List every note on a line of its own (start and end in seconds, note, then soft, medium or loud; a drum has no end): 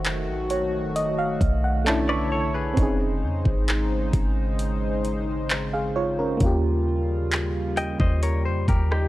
0.00 0.29 F1 loud
0.00 1.83 D#3 medium
0.00 1.83 A3 medium
0.00 2.73 A3 medium
0.00 1.83 D#4 medium
0.00 1.84 F#4 loud
0.00 1.85 F#4 medium
0.00 1.82 C5 medium
0.05 clap loud
0.05 closed hi-hat medium
0.28 0.86 A1 loud
0.50 0.93 C#5 medium
0.50 closed hi-hat medium
0.84 1.38 F1 loud
0.96 1.17 D#5 medium
0.96 closed hi-hat medium
1.19 1.61 F5 medium
1.41 2.73 B1 loud
1.41 kick medium
1.41 closed hi-hat medium
1.64 1.85 F#5 medium
1.85 2.76 D3 medium
1.85 2.76 A3 medium
1.85 2.75 C#4 medium
1.85 2.78 D4 medium
1.85 2.76 E4 medium
1.85 2.76 C#5 medium
1.85 2.08 A5 medium
1.85 clap loud
1.85 closed hi-hat medium
1.89 2.79 E4 medium
2.09 2.31 B4 medium
2.09 2.31 D5 medium
2.09 2.74 C#6 medium
2.32 2.54 A4 medium
2.32 2.53 C#5 medium
2.54 2.98 G#4 medium
2.54 2.98 B4 medium
2.74 3.24 F1 loud
2.74 5.44 C4 medium
2.74 5.46 C#4 medium
2.74 kick loud
2.74 closed hi-hat medium
2.78 9.08 C#3 medium
2.78 6.38 G#3 medium
2.78 6.38 D#4 loud
2.78 5.47 D#4 medium
2.78 6.37 C5 medium
2.82 5.49 G#4 medium
3.23 3.44 F2 loud
3.45 4.11 G#1 loud
3.45 kick medium
3.68 clap loud
3.68 closed hi-hat medium
4.13 6.37 G#1 loud
4.13 kick loud
4.13 closed hi-hat medium
4.59 closed hi-hat medium
5.05 closed hi-hat medium
5.50 clap loud
5.50 closed hi-hat medium
5.73 5.95 G#4 medium
5.73 5.95 F5 medium
5.96 6.18 F4 medium
5.96 6.17 C#5 medium
6.19 6.39 C#4 medium
6.19 6.62 A#4 medium
6.37 7.96 D#2 loud
6.37 9.08 G3 medium
6.37 9.08 A#3 medium
6.37 9.08 C#4 medium
6.37 8.21 F4 medium
6.37 kick loud
6.37 closed hi-hat medium
6.43 9.08 F4 medium
6.43 9.08 G4 medium
7.32 clap loud
7.32 closed hi-hat medium
7.77 7.99 D#5 medium
7.77 7.99 G5 medium
7.77 closed hi-hat medium
8.00 8.48 D#2 loud
8.00 8.22 C5 medium
8.00 8.22 D#5 medium
8.00 kick medium
8.22 9.08 G4 medium
8.22 8.45 A#4 medium
8.22 8.44 C#5 medium
8.22 closed hi-hat medium
8.45 8.67 F2 loud
8.45 8.67 C5 medium
8.68 9.08 D#2 loud
8.68 8.90 G4 medium
8.68 8.90 A#4 medium
8.68 kick medium
8.68 closed hi-hat medium
8.91 9.08 D#4 medium
8.91 9.08 G4 medium
8.91 cross-stick loud